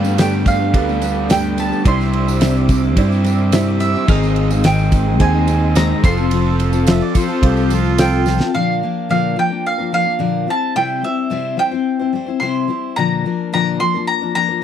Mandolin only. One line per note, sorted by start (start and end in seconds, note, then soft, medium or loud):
0.00 0.19 F5 medium
0.19 0.47 G5 medium
0.47 1.30 F5 medium
1.30 1.59 G5 medium
1.60 1.87 A5 loud
1.88 3.50 C6 medium
3.80 4.07 E5 medium
4.09 4.66 F5 medium
4.65 5.16 G5 medium
5.21 5.76 G#5 loud
5.76 6.04 A#5 loud
6.05 7.95 C6 loud
7.99 8.50 G5 medium
8.54 9.09 F5 loud
9.11 9.38 F5 medium
9.39 9.64 G5 loud
9.66 9.93 F5 loud
9.94 10.50 F5 loud
10.50 10.75 A5 loud
10.76 11.01 G5 loud
11.04 11.55 E5 loud
11.59 12.10 G5 loud
12.40 12.92 C6 loud
12.96 13.52 A#5 loud
13.54 13.80 A#5 loud
13.80 14.07 C6 loud
14.07 14.33 A#5 loud
14.35 14.64 A#5 loud